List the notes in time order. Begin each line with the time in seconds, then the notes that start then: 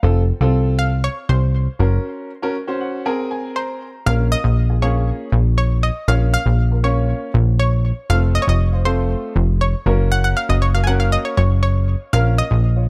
0.03 F1 C4 F4 A4
0.41 C2 C4 F4 A4
0.79 F5
1.04 C#5
1.29 C2 C5
1.79 F#1 C#4 F#4 A#4
2.42 C#4 F#4 A#4
2.68 C#4 F#4 C5
2.81 F#5
3.05 C4 G#4 A#4 G#5
3.31 G#5
3.56 C5 A#5
4.06 A#1 A#3 C#4 F4 A#4 F5
4.32 D#5
4.44 A#1
4.69 F4 G#4
4.82 A#3 C#4 F4 G#4 C#5
5.32 A#1
5.58 C#5
5.83 D#5
6.08 A#1 A#3 C#4 F4 C#5 F5
6.34 F5
6.46 A#1
6.71 F4 A#4
6.83 A#3 C#4 F4 C#5
7.34 A#1
7.59 C#5
8.10 F1 A3 C4 F4 A4 F5
8.35 D#5
8.42 C#5
8.48 F1 D#5
8.72 F4 C5
8.85 A3 C4 F4 A4 C5
9.36 F1
9.61 C#5
9.86 F#1 A#3 C#4 F#4 A#4
10.12 F#5
10.24 F#5
10.37 F5
10.49 F#1 D#5
10.62 C#5
10.74 F#4 A#4 F5
10.84 A#3 C#4 F#4 A#4 F#5 G#5
11.00 F5
11.12 D#5
11.25 C#5
11.37 F#1 C#5
11.63 C#5
12.13 A#1 A#3 C#4 F4 A#4 F5
12.38 D#5
12.51 A#1
12.76 F4 C#5